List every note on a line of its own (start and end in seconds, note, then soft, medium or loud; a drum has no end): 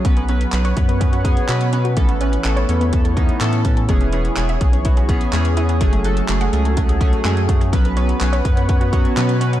0.05 0.46 B1 medium
0.05 0.24 F#3 loud
0.05 0.14 F#3 loud
0.05 1.95 B3 medium
0.05 0.24 B3 loud
0.05 0.24 C#4 loud
0.05 1.95 B4 medium
0.05 0.24 B4 loud
0.05 1.95 C#5 medium
0.05 1.95 F#5 medium
0.05 kick loud
0.05 closed hi-hat medium
0.17 0.26 B3 medium
0.17 closed hi-hat soft
0.28 0.48 F#3 medium
0.28 0.48 B3 medium
0.28 0.48 C#4 medium
0.28 0.38 C#4 medium
0.28 0.48 B4 loud
0.28 closed hi-hat medium
0.41 closed hi-hat medium
0.52 0.73 B1 loud
0.52 0.72 F#3 medium
0.52 0.72 B3 medium
0.52 0.72 C#4 medium
0.52 0.72 B4 loud
0.52 clap loud
0.52 closed hi-hat medium
0.65 0.74 C#5 medium
0.65 closed hi-hat soft
0.76 1.38 F#2 medium
0.76 0.96 F#3 medium
0.76 0.96 B3 medium
0.76 0.96 C#4 medium
0.76 0.96 B4 loud
0.76 kick medium
0.76 closed hi-hat medium
0.89 0.98 B3 medium
0.89 closed hi-hat soft
1.00 1.20 F#3 medium
1.00 1.20 B3 medium
1.00 1.10 C#4 medium
1.00 1.20 C#4 medium
1.00 1.20 B4 loud
1.00 kick medium
1.00 closed hi-hat medium
1.13 1.22 F#4 medium
1.13 closed hi-hat medium
1.24 1.44 F#3 loud
1.24 1.44 B3 loud
1.24 1.44 C#4 loud
1.24 1.44 G#4 loud
1.24 kick loud
1.24 closed hi-hat medium
1.37 closed hi-hat soft
1.49 1.98 B2 medium
1.49 1.68 F#3 loud
1.49 1.58 F#3 medium
1.49 1.68 B3 loud
1.49 1.68 C#4 loud
1.49 1.68 B4 loud
1.49 clap loud
1.49 closed hi-hat medium
1.61 closed hi-hat medium
1.73 1.92 F#3 medium
1.73 1.92 B3 medium
1.73 1.82 C#4 medium
1.73 1.92 C#4 medium
1.73 1.92 B4 loud
1.73 closed hi-hat medium
1.85 1.94 F#4 medium
1.85 closed hi-hat medium
1.97 2.37 A1 loud
1.97 2.16 E3 loud
1.97 2.06 A3 loud
1.97 3.87 A3 medium
1.97 2.16 B3 loud
1.97 2.16 C#4 loud
1.97 5.77 E4 medium
1.97 2.16 A4 loud
1.97 3.87 B4 medium
1.97 3.87 C#5 medium
1.97 kick loud
1.97 closed hi-hat medium
2.09 2.18 B3 medium
2.09 closed hi-hat soft
2.21 2.40 E3 medium
2.21 2.40 B3 medium
2.21 2.30 C#4 medium
2.21 2.40 C#4 medium
2.21 2.40 B4 loud
2.21 closed hi-hat medium
2.33 closed hi-hat soft
2.44 2.65 A1 medium
2.44 2.64 E3 medium
2.44 2.64 B3 medium
2.44 2.64 C#4 medium
2.44 2.64 A4 loud
2.44 clap loud
2.44 closed hi-hat medium
2.57 2.66 C#5 medium
2.57 closed hi-hat soft
2.69 3.30 E2 medium
2.69 2.88 E3 medium
2.69 2.88 B3 medium
2.69 2.88 C#4 medium
2.69 2.88 A4 medium
2.69 closed hi-hat medium
2.81 2.90 B3 medium
2.81 closed hi-hat soft
2.93 3.12 E3 medium
2.93 3.12 B3 medium
2.93 3.02 C#4 medium
2.93 3.12 C#4 medium
2.93 3.12 A4 loud
2.93 kick medium
2.93 closed hi-hat medium
3.05 3.14 A4 medium
3.05 closed hi-hat medium
3.16 3.36 E3 loud
3.16 3.36 B3 loud
3.16 3.36 C#4 loud
3.16 3.36 D#4 loud
3.16 kick loud
3.16 closed hi-hat medium
3.29 closed hi-hat soft
3.41 3.90 A2 loud
3.41 3.60 E3 loud
3.41 3.50 A3 medium
3.41 3.60 B3 loud
3.41 3.60 C#4 loud
3.41 3.60 A4 loud
3.41 clap loud
3.41 closed hi-hat medium
3.53 closed hi-hat medium
3.65 3.84 E3 medium
3.65 3.84 B3 medium
3.65 3.84 C#4 medium
3.65 3.74 C#4 medium
3.65 3.84 A4 loud
3.65 kick loud
3.65 closed hi-hat medium
3.77 3.86 A4 medium
3.77 closed hi-hat soft
3.89 4.29 E1 loud
3.89 4.08 E3 loud
3.89 5.79 E3 medium
3.89 3.98 G#3 loud
3.89 4.08 B3 loud
3.89 4.08 C#4 loud
3.89 4.08 G#4 loud
3.89 7.69 G#4 medium
3.89 5.79 C#5 medium
3.89 kick loud
3.89 closed hi-hat medium
4.01 4.10 C#4 medium
4.01 closed hi-hat soft
4.13 4.32 E3 medium
4.13 4.32 B3 medium
4.13 4.32 C#4 medium
4.13 4.22 E4 medium
4.13 4.32 G#4 loud
4.13 closed hi-hat medium
4.25 closed hi-hat medium
4.37 4.57 E1 medium
4.37 4.56 E3 medium
4.37 4.56 B3 medium
4.37 4.56 C#4 medium
4.37 4.56 G#4 loud
4.37 clap loud
4.37 closed hi-hat medium
4.49 4.58 E5 medium
4.49 closed hi-hat soft
4.61 5.22 B1 medium
4.61 4.80 E3 medium
4.61 4.80 B3 medium
4.61 4.80 C#4 medium
4.61 4.80 G#4 loud
4.61 kick medium
4.61 closed hi-hat medium
4.73 4.82 C#4 medium
4.73 closed hi-hat soft
4.85 5.04 E3 medium
4.85 5.04 B3 medium
4.85 5.04 C#4 medium
4.85 4.94 E4 medium
4.85 5.04 F#4 loud
4.85 kick medium
4.85 closed hi-hat medium
4.97 5.06 G#4 medium
4.97 closed hi-hat medium
5.09 5.28 E3 loud
5.09 5.28 B3 loud
5.09 5.28 C#4 loud
5.09 5.28 G#4 loud
5.09 kick loud
5.09 closed hi-hat medium
5.21 closed hi-hat soft
5.33 5.82 E2 medium
5.33 5.52 E3 loud
5.33 5.42 G#3 medium
5.33 5.52 B3 loud
5.33 5.52 C#4 loud
5.33 5.52 G#4 loud
5.33 clap loud
5.33 closed hi-hat medium
5.45 closed hi-hat medium
5.57 5.76 E3 medium
5.57 5.76 B3 medium
5.57 5.76 C#4 medium
5.57 5.66 E4 medium
5.57 5.76 G#4 loud
5.57 closed hi-hat medium
5.69 5.78 G#4 medium
5.69 closed hi-hat soft
5.80 6.21 F#1 loud
5.80 6.00 F#3 loud
5.80 7.71 F#3 medium
5.80 5.90 G#3 loud
5.80 6.00 A3 loud
5.80 6.00 C#4 loud
5.80 7.71 F#4 medium
5.80 6.00 G#4 loud
5.80 7.71 A4 medium
5.80 kick loud
5.80 closed hi-hat medium
5.93 6.02 A3 medium
5.93 closed hi-hat soft
6.04 6.24 F#3 medium
6.04 6.24 A3 medium
6.04 6.24 C#4 medium
6.04 6.14 F#4 medium
6.04 6.24 A4 loud
6.04 closed hi-hat medium
6.17 closed hi-hat soft
6.28 6.49 F#1 loud
6.28 6.48 F#3 medium
6.28 6.48 A3 medium
6.28 6.48 C#4 medium
6.28 6.48 G#4 loud
6.28 clap loud
6.28 closed hi-hat medium
6.41 6.50 F#5 medium
6.41 closed hi-hat soft
6.53 7.14 C#2 medium
6.53 6.72 F#3 medium
6.53 6.72 A3 medium
6.53 6.72 C#4 medium
6.53 6.72 G#4 loud
6.53 closed hi-hat medium
6.65 6.74 A3 medium
6.65 closed hi-hat soft
6.77 6.96 F#3 medium
6.77 6.96 A3 medium
6.77 6.96 C#4 medium
6.77 6.86 F#4 medium
6.77 6.96 G#4 loud
6.77 kick medium
6.77 closed hi-hat medium
6.89 6.98 G#4 medium
6.89 closed hi-hat medium
7.00 7.20 F#3 loud
7.00 7.20 A3 loud
7.00 7.20 C#4 loud
7.00 7.20 G#4 loud
7.00 kick loud
7.00 closed hi-hat medium
7.13 closed hi-hat soft
7.25 7.74 F#2 loud
7.25 7.44 F#3 loud
7.25 7.34 G#3 medium
7.25 7.44 A3 loud
7.25 7.44 C#4 loud
7.25 7.44 G#4 loud
7.25 clap loud
7.25 closed hi-hat medium
7.37 closed hi-hat medium
7.48 7.68 F#3 medium
7.48 7.68 A3 medium
7.48 7.68 C#4 medium
7.48 7.58 F#4 medium
7.48 7.68 G#4 loud
7.48 kick loud
7.48 closed hi-hat medium
7.61 7.70 G#4 medium
7.61 closed hi-hat medium
7.72 8.14 B1 loud
7.72 7.92 F#3 loud
7.72 7.82 F#3 loud
7.72 7.92 B3 loud
7.72 9.60 B3 medium
7.72 7.92 C#4 loud
7.72 9.60 B4 medium
7.72 7.92 B4 loud
7.72 9.60 C#5 medium
7.72 9.60 F#5 medium
7.72 kick loud
7.72 closed hi-hat loud
7.85 7.94 B3 medium
7.85 closed hi-hat soft
7.97 8.16 F#3 medium
7.97 8.16 B3 medium
7.97 8.06 C#4 medium
7.97 8.16 C#4 medium
7.97 8.16 B4 loud
7.97 closed hi-hat medium
8.09 closed hi-hat soft
8.20 8.41 B1 medium
8.20 8.40 F#3 medium
8.20 8.40 B3 medium
8.20 8.40 C#4 medium
8.20 8.40 B4 loud
8.20 clap loud
8.20 closed hi-hat medium
8.33 8.42 C#5 medium
8.33 closed hi-hat soft
8.45 9.06 F#2 medium
8.45 8.64 F#3 medium
8.45 8.64 B3 medium
8.45 8.64 C#4 medium
8.45 8.64 B4 loud
8.45 kick loud
8.45 closed hi-hat medium
8.57 8.66 B3 medium
8.57 closed hi-hat soft
8.69 8.88 F#3 medium
8.69 8.88 B3 medium
8.69 8.78 C#4 medium
8.69 8.88 C#4 medium
8.69 8.88 B4 loud
8.69 kick medium
8.69 closed hi-hat medium
8.81 8.90 F#4 medium
8.81 closed hi-hat medium
8.92 9.12 F#3 loud
8.92 9.12 B3 loud
8.92 9.12 C#4 loud
8.92 9.12 F#4 loud
8.92 kick loud
8.92 closed hi-hat medium
9.05 closed hi-hat soft
9.17 9.60 B2 loud
9.17 9.36 F#3 loud
9.17 9.26 F#3 medium
9.17 9.36 B3 loud
9.17 9.36 C#4 loud
9.17 9.36 B4 loud
9.17 clap loud
9.17 closed hi-hat medium
9.29 closed hi-hat medium
9.40 9.60 F#3 loud
9.40 9.60 B3 medium
9.40 9.60 C#4 medium
9.40 9.50 C#4 medium
9.40 9.60 B4 loud
9.40 closed hi-hat medium
9.53 9.60 F#4 medium
9.53 closed hi-hat medium